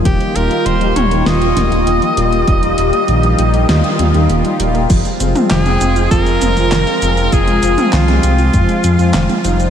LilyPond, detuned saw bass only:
\new Staff \with { instrumentName = "Detuned saw bass" } { \clef bass \time 4/4 \key f \minor \tempo 4 = 99 ees,,16 r16 ees,,16 r16 ees,,8 ees,,8 ees,,8 ees,,16 ees,,16 ees,,16 r16 ees,,8 | ees,,8 ees,,16 r16 bes,,8 bes,,8 ees,16 r16 ees,16 ees,16 ees,,16 r16 ees,,8 | f,,16 r16 f,,16 r16 f,,8 f,,8 f,,8 f,,16 f,,16 f,,16 r16 f,,8 | f,,8 f,,16 r16 c,8 c,8 f,16 r16 f,16 f,16 f,,16 r16 f,,8 | }